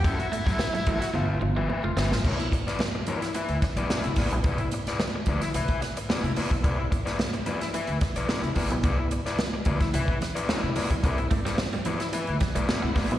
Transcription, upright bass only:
\new Staff \with { instrumentName = "Upright bass" } { \clef bass \time 4/4 \key c \lydian \tempo 4 = 109 fis,16 r8 a,16 r8 a,,16 r16 g,,8 g,,8 r16 f,,16 g,,16 a,,16 | c,8 r4. r16 d,16 r16 b,,16 r16 c,16 a,,16 b,,16 | c,8 r4 d,8 c,8 r8. c16 r16 b,,16 | c,8 r4. r16 d,16 r16 b,,16 r16 c,16 a,,16 b,,16 |
c,8 r4 d,8 c,8 r8. c16 r16 b,,16 | c,8 r4. r16 d,16 r16 b,,16 r16 c,16 a,,16 b,,16 | }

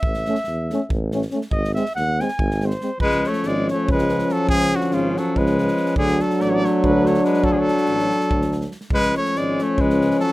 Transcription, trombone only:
\new Staff \with { instrumentName = "Trombone" } { \clef bass \time 7/8 \tempo 4 = 142 r8 a8 r8 a8 r8 a8 a8 | r8 gis8 r8 gis8 r8 gis8 gis8 | eis2.~ eis8~ | eis2.~ eis8 |
fis2.~ fis8~ | fis2. r8 | eis2.~ eis8 | }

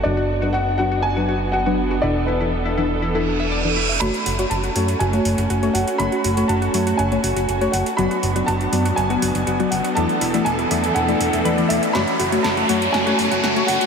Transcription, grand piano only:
\new Staff \with { instrumentName = "Grand piano" } { \time 4/4 \key fis \minor \tempo 4 = 121 d''4 fis''8 fis''8 gis''4 fis''4 | d''8 b'4 r2 r8 | b''4 a''4 gis''4. fis''8 | b''4 a''4 gis''4. fis''8 |
b''4 a''4 gis''4. fis''8 | a''4 gis''4 fis''4. e''8 | b''4 a''4 gis''4. fis''8 | }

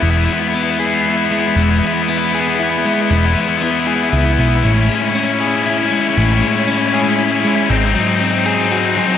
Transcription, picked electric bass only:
\new Staff \with { instrumentName = "Picked electric bass" } { \clef bass \time 3/4 \key e \major \tempo 4 = 117 e,,8 r2 r8 | e,,8 r2 r8 | e,,8 r4. cis,8 b,,8 | a,,8 r2 r8 |
a,,8 r2 r8 | gis,,8 r2 r8 | }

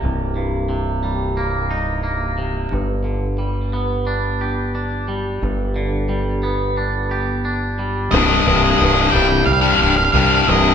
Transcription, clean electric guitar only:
\new Staff \with { instrumentName = "Clean electric guitar" } { \clef bass \time 4/4 \key c \minor \tempo 4 = 89 <c, c bes ees'>8 g,8 c8 g8 bes8 ees'8 bes8 c8 | g,8 d8 g8 b8 d'8 g'8 d'8 g8 | g,8 d8 g8 b8 d'8 g'8 d'8 g8 | c,8 g,8 g,8 g4 g4 c8 | }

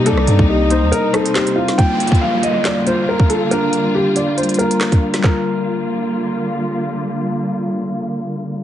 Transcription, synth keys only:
\new Staff \with { instrumentName = "Synth keys" } { \time 4/4 \key g \minor \tempo 4 = 139 <g bes c' ees'>4~ <g bes c' ees'>16 r16 <g bes c' ees'>4 <g bes c' ees'>4~ <g bes c' ees'>16 r16 | <g bes f'>4.~ <g bes f'>16 r8. <g bes f'>4~ <g bes f'>16 r16 | <g bes d'>4. r16 <g bes f'>8. <g bes f'>4~ <g bes f'>16 r16 | <g bes f'>1~ |
<g bes f'>1 | }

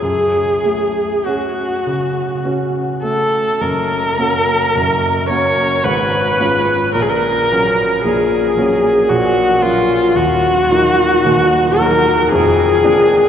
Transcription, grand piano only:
\new Staff \with { instrumentName = "Grand piano" } { \clef bass \time 3/4 \key fis \minor \tempo 4 = 54 fis,8 a8 <cis' fis'>8 cis8 <cis' fis'>8 a8 | \key fis \major <fis,, fis,>8 <ais cis' fis'>8 <fis,, fis,>8 <ais cis' fis'>8 <gis,, gis,>8 <gis cis' eis'>8 | <ais,, ais,>8 <fis ais cis'>8 <ais,, ais,>8 <fis ais cis'>8 <ais,, ais,>8 <fis ais cis'>8 | <dis,, dis,>8 <fis ais dis'>8 <dis,, dis,>8 <fis ais dis'>8 <eis,, eis,>8 <eis ais d'>8 | }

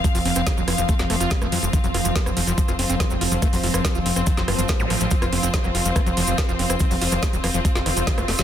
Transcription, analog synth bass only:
\new Staff \with { instrumentName = "Analog synth bass" } { \clef bass \time 4/4 \tempo 4 = 142 r16 f,,16 f,,16 f,,16 r16 ees,,16 f,,16 f,,16 r16 f,,16 f,,16 f,,16 r16 f,,16 f,16 f,,16 | r16 f,,16 f,,16 f,,16 r16 f,,16 f,,16 f,,16 r16 f,,16 f,,16 f,,16 r16 f,,16 f,,16 f,,16 | r16 f,,16 f,,16 f,,16 r16 ees,,16 f,,16 f,,16 r16 f,,16 ges,,16 ges,,16 r16 a,,16 a,,16 a,,16 | r16 f,,16 f,,16 f,,16 r16 f,,16 f,,16 f,,16 r16 f,,16 f,,16 f,,16 r16 f,,16 f,,16 f,,16 |
r16 f,,16 f,,16 f,,16 r16 ees,,16 f,,16 f,,16 r16 f,,16 f,,16 f,,16 r16 ges,,16 f,,16 f,,16 | }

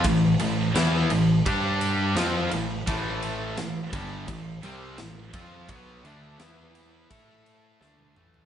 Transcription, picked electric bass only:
\new Staff \with { instrumentName = "Picked electric bass" } { \clef bass \time 4/4 \key a \minor \tempo 4 = 85 a,,8 a,,8 e,8 a,,8 g,4 f,8 a,,8 | a,,4 a,,8 g,,8 a,,8 c,8 a,,8 f,8 | b,,8 d,8 e,4 a,4 d,8 a,,8 | }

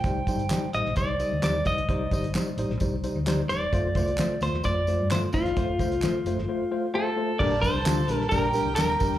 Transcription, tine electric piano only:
\new Staff \with { instrumentName = "Tine electric piano" } { \time 4/4 \key f \mixolydian \tempo 4 = 130 << { r1 | r1 | r1 | r2 r8 f''8 a''4 |
r1 | } \\ { <g ees' c''>8 <g ees' c''>8 <g ees' c''>8 <g ees' c''>8 <g ees' c''>8 <g ees' c''>8 <g ees' c''>8 <g ees' c''>8 | <g ees' c''>8 <g ees' c''>8 <g ees' c''>8 <g ees' c''>8 <g ees' c''>8 <g ees' c''>8 <g ees' c''>8 <g ees' c''>8 | <a f' c''>8 <a f' c''>8 <a f' c''>8 <a f' c''>8 <a f' c''>8 <a f' c''>8 <a f' c''>8 <a f' c''>8 | <a f' c''>8 <a f' c''>8 <a f' c''>8 <a f' c''>8 <a f' c''>8 <a f' c''>8 <a f' c''>8 <a f' c''>8 |
<g d' bes'>8 <g d' bes'>8 <g d' f'>8 <g d' bes'>8 <g d' bes'>8 <g d' bes'>8 <g d' bes'>8 <g d' bes'>8 | } >> }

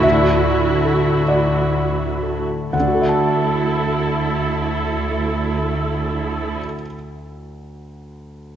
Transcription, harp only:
\new Staff \with { instrumentName = "Harp" } { \time 6/8 \key d \major \tempo 4. = 41 << { <d fis' a' d'' e'' fis''>8 fis'8 a'8 fis''8 e''8 a'8~ | a'2.~ | a'2. | } \\ { r2. | <d d' fis' a' e'' a''>2.~ | <d d' fis' a' e'' a''>2. | } >> }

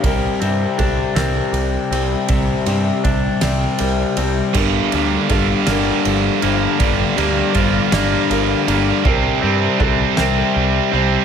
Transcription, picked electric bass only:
\new Staff \with { instrumentName = "Picked electric bass" } { \clef bass \time 6/8 \key c \dorian \tempo 4. = 53 c,8 g,8 c,8 c,8 c,8 c,8 | c,8 g,8 c,8 c,8 c,8 c,8 | g,,8 d,8 g,,8 g,,8 g,,8 g,,8 | g,,8 d,8 g,,8 g,,8 g,,8 g,,8 |
c,8 g,8 c,8 c,8 c,8 c,8 | }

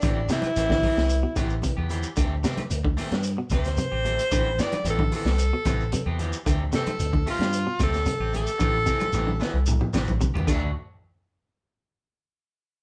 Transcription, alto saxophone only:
\new Staff \with { instrumentName = "Alto saxophone" } { \time 4/4 \key a \dorian \tempo 4 = 112 d'8 e'2. r8 | r2 r8 c''4.~ | c''8 d''8 a'8 a'2 r8 | r8 a'4 f'4 a'4 a'8~ |
a'2~ a'8 r4. | r1 | }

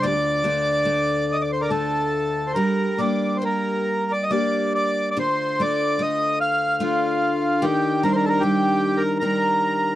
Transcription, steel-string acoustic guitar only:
\new Staff \with { instrumentName = "Steel-string acoustic guitar" } { \time 3/4 \key d \phrygian \tempo 4 = 73 <d, f'>8 <a d' f'>8 a4 <a d' f'>4 | <g g'>8 <bes d' g'>8 bes4 <bes d' g'>4 | <d, f'>8 <a f'>8 a4 <a d' f'>4 | <ees d'>8 <g c' d'>8 g4 <g c' d'>4 | }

